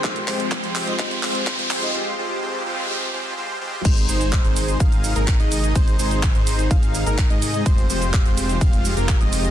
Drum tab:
CC |----------------|----------------|x---------------|----------------|
RD |----------------|----------------|x---x---x---x---|x---x---x---x---|
HH |xxoxxxoxxxoxxxox|----------------|xxoxxxoxxxoxxxox|xxoxxxoxxxoxxxox|
SH |----------------|----------------|xxxxxxxxxxxxxxxx|xxxxxxxxxxxxxxxx|
CP |x-x-x-x-x-x-x-x-|----------------|----x-------x---|----x-------x---|
BD |o---o---o---o---|----------------|o---o---o---o---|o---o---o---o---|

CC |----------------|
RD |x---x---x---x---|
HH |xxoxxxoxxxoxxxox|
SH |xxxxxxxxxxxxxxxx|
CP |----x-------x---|
BD |o---o---o---o---|